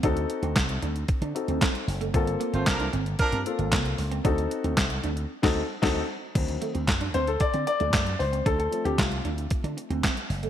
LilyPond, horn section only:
\new Staff \with { instrumentName = "Horn section" } { \time 4/4 \key d \phrygian \tempo 4 = 114 r1 | r8. <a f' c''>16 <f d' bes'>8 r8 <f d' bes'>8 r4. | r1 | r1 |
r1 | }